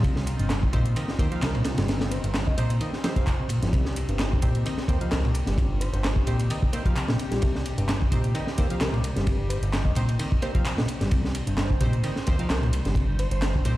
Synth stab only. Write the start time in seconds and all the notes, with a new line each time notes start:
0.73 C4 D#4 G4 C5
0.96 C4 D#4 G4 D#5
1.19 C4 D#4 G4 C5
1.32 C4 D#4 G4 F5
2.58 C4 D#4 G4 C5
2.81 C4 D#4 G4 D#5
3.04 C4 D#4 G4 C5
3.16 C4 D#4 G4 F5
4.43 C4 D#4 G4 C5
4.66 C4 D#4 G4 D#5
4.89 C4 D#4 G4 C5
5.01 C4 D#4 G4 F5
6.27 C4 D#4 G4 C5
6.50 C4 D#4 G4 D#5
6.73 C4 D#4 G4 C5
6.86 C4 D#4 G4 F5
8.12 C4 D#4 G4 C5
8.35 C4 D#4 G4 D#5
8.58 C4 D#4 G4 C5
8.70 C4 D#4 G4 F5
9.96 C4 D#4 G4 C5
10.20 C4 D#4 G4 D#5
10.42 C4 D#4 G4 C5
10.55 C4 D#4 G4 F5
11.81 C4 D#4 G4 C5
12.04 C4 D#4 G4 D#5
12.27 C4 D#4 G4 C5
12.39 C4 D#4 G4 F5
13.66 C4 D#4 G4 C5